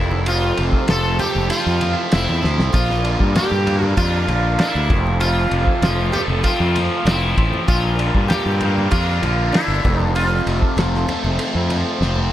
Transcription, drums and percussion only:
0.11 high conga
0.26 ride
0.57 ride
0.73 kick
0.88 snare, ride
1.19 ride, high conga, low conga
1.35 high conga
1.50 ride
1.81 ride, high conga
2.12 snare, ride
2.42 snare, low conga
2.58 snare, high conga
2.74 kick, ride
2.90 snare
3.05 ride
3.20 kick
3.35 snare, ride, low conga
3.67 ride, low conga
3.82 high conga
3.97 kick, ride
4.28 ride, high conga
4.59 snare, ride
4.90 kick, ride, low conga
5.07 high conga
5.21 ride
5.51 ride
5.67 kick
5.82 snare, ride, low conga
6.13 ride, high conga, low conga
6.30 high conga
6.44 kick, ride
6.76 ride, high conga
7.07 snare, ride
7.38 kick, ride, low conga
7.54 high conga
7.68 kick, ride
7.99 ride
8.15 kick
8.30 snare, ride, low conga
8.61 ride, high conga, low conga
8.78 high conga
8.91 kick, ride
9.23 ride, high conga
9.54 snare, ride
9.85 kick, ride, low conga
10.00 high conga
10.16 ride
10.47 ride
10.62 kick
10.77 snare, ride, low conga
10.95 snare
11.08 ride, high conga, low conga
11.24 high conga
11.39 ride
11.70 ride, high conga
12.02 snare
12.16 high conga

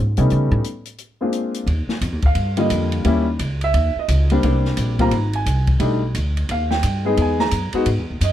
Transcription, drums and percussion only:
0.17 closed hi-hat
0.30 closed hi-hat
0.64 closed hi-hat
0.85 closed hi-hat
0.98 closed hi-hat
1.33 closed hi-hat
1.54 closed hi-hat
1.67 kick, ride
1.89 snare
2.01 kick, hi-hat pedal, ride
2.22 kick, ride
2.35 kick, ride
2.57 ride
2.70 kick, hi-hat pedal, ride
2.92 ride
3.05 kick, ride
3.39 kick, hi-hat pedal, ride
3.61 ride
3.74 kick, ride
4.08 kick, hi-hat pedal, ride
4.30 ride
4.43 kick, ride
4.65 snare
4.77 kick, hi-hat pedal, ride
4.99 kick, ride
5.11 ride
5.33 ride
5.46 kick, hi-hat pedal, ride
5.67 kick, ride
5.80 kick, ride
6.15 kick, hi-hat pedal, ride
6.37 ride
6.49 kick, ride
6.71 snare
6.83 kick, hi-hat pedal, ride
7.17 kick, ride
7.39 snare
7.51 kick, hi-hat pedal, ride
7.73 ride
7.86 kick, ride
8.21 kick, hi-hat pedal, ride

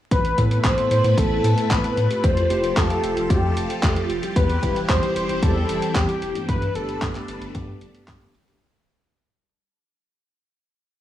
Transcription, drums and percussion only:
0.11 kick, closed hi-hat
0.25 closed hi-hat
0.38 kick, closed hi-hat
0.51 closed hi-hat
0.64 kick, clap, closed hi-hat
0.78 closed hi-hat
0.91 closed hi-hat
1.04 closed hi-hat
1.18 kick, closed hi-hat
1.44 closed hi-hat
1.58 closed hi-hat
1.71 kick, clap, closed hi-hat
1.84 closed hi-hat
1.97 closed hi-hat
2.11 closed hi-hat
2.24 kick, closed hi-hat
2.37 closed hi-hat
2.50 closed hi-hat
2.64 closed hi-hat
2.77 kick, clap, closed hi-hat
2.90 closed hi-hat
3.04 closed hi-hat
3.17 closed hi-hat
3.30 kick, closed hi-hat
3.57 closed hi-hat
3.70 closed hi-hat
3.83 kick, clap, closed hi-hat
3.96 closed hi-hat
4.10 closed hi-hat
4.23 closed hi-hat
4.36 kick, closed hi-hat
4.50 closed hi-hat
4.63 kick, closed hi-hat
4.76 closed hi-hat
4.89 kick, clap, closed hi-hat
5.03 closed hi-hat
5.16 closed hi-hat
5.29 closed hi-hat
5.42 kick, closed hi-hat
5.69 closed hi-hat
5.82 closed hi-hat
5.96 kick, clap, closed hi-hat
6.09 closed hi-hat
6.22 closed hi-hat
6.35 closed hi-hat
6.49 kick, closed hi-hat
6.62 closed hi-hat
6.75 closed hi-hat
6.89 closed hi-hat
7.02 kick, clap, closed hi-hat
7.15 clap, closed hi-hat
7.28 closed hi-hat
7.42 closed hi-hat
7.55 kick, closed hi-hat
7.81 closed hi-hat
7.95 closed hi-hat
8.08 kick, clap, closed hi-hat
8.21 closed hi-hat
8.35 closed hi-hat
8.48 closed hi-hat

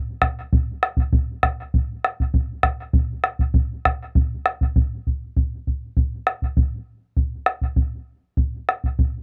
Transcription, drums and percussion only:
0.22 bombo rim, bombo low
0.53 bombo low
0.83 bombo rim
0.97 bombo low
1.13 bombo low
1.43 bombo rim, bombo low
1.74 bombo low
2.04 bombo rim
2.20 bombo low
2.34 bombo low
2.63 bombo rim, bombo low
2.93 bombo low
3.24 bombo rim
3.39 bombo low
3.54 bombo low
3.85 bombo rim, bombo low
4.15 bombo low
4.46 bombo rim
4.61 bombo low
4.76 bombo low
5.07 bombo low
5.36 bombo low
5.67 bombo low
5.97 bombo low
6.27 bombo rim
6.42 bombo low
6.57 bombo low
7.17 bombo low
7.46 bombo rim
7.61 bombo low
7.76 bombo low
8.37 bombo low
8.69 bombo rim
8.84 bombo low
8.99 bombo low

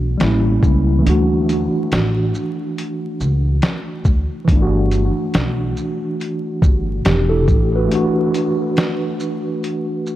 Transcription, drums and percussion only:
0.20 snare, closed hi-hat
0.63 kick, shaker
1.06 closed hi-hat
1.49 closed hi-hat, shaker
1.92 snare, closed hi-hat
2.34 shaker
2.78 closed hi-hat
3.20 shaker
3.62 snare, closed hi-hat
4.05 kick, shaker
4.48 kick, closed hi-hat
4.91 closed hi-hat, shaker
5.34 snare, closed hi-hat
5.77 shaker
6.21 closed hi-hat
6.62 kick, shaker
7.05 snare, closed hi-hat
7.48 kick, shaker
7.91 closed hi-hat
8.34 closed hi-hat, shaker
8.77 snare, closed hi-hat
9.20 shaker
9.64 closed hi-hat
10.06 shaker

